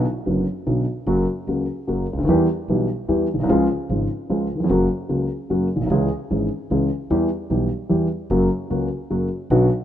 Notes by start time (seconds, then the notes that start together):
0.26 F#1 F#2 D3 F#3 B3 F#4
0.66 B1 B2 D3 F#3 B3 F#4
1.06 F#1 F#2 C#3 F#3 A#3 F#4
1.47 C#2 C#3 F#3 A#3 F#4
1.87 F#1 F#2 C#3 F#3 A#3 F#4
2.13 C#2
2.18 D2
2.23 D#2
2.28 E2 E3 G3 B3 G4
2.68 B1 B2 E3 G3 B3 G4
3.08 E2 E3 G3 B3 G4
3.34 A#1
3.38 B1
3.44 C2
3.49 C#2 C#3 F3 G#3 F4
3.89 G#1 G#2 C#3 F3 G#3 F4
4.30 C#2 C#3 F3 G#3 F4
4.55 D#2
4.60 E2
4.64 F2
4.69 F#1 F#2 C#3 F#3 A#3 F#4
5.09 C#2 C#3 F#3 A#3 F#4
5.50 F#1 F#2 C#3 F#3 A#3 F#4
5.76 A#1
5.81 B1
5.85 C2
5.90 C#2 C#3 E3 G#3 C#4 G#4
6.30 G#1 G#2 E3 G#3 C#4 G#4
6.70 C#2 C#3 E3 G#3 C#4 G#4
7.10 E2 E3 G3 B3 G4
7.50 B1 B2 E3 G3 B3 G4
7.89 E2 E3 G3 B3 G4
8.30 F#1 F#2 C#3 F#3 A#3 F#4
8.70 C#2 C#3 F#3 A#3 F#4
9.10 F#1 F#2 C#3 F#3 A#3 F#4
9.50 B1 B2 D3 F#3 B3 F#4